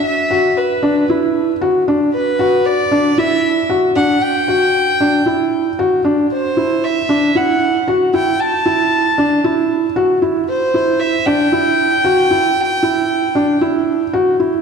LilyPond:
<<
  \new Staff \with { instrumentName = "Violin" } { \time 4/4 \key d \mixolydian \tempo 4 = 115 e''4 b'4 r2 | b'4 d''4 e''4 r8 fis''8 | g''2. r4 | c''4 e''4 fis''4 r8 g''8 |
a''2. r4 | c''4 e''8 g''2~ g''8~ | g''2. r4 | }
  \new Staff \with { instrumentName = "Felt piano" } { \time 4/4 \key d \mixolydian r8 fis'4 d'8 e'4 fis'8 d'8 | r8 fis'4 d'8 e'4 fis'8 d'8 | r8 fis'4 d'8 e'4 fis'8 d'8 | r8 e'4 d'8 e'4 fis'8 e'8 |
r8 e'4 d'8 e'4 fis'8 e'8 | r8 e'4 d'8 e'4 fis'8 e'8 | r8 e'4 d'8 e'4 fis'8 e'8 | }
>>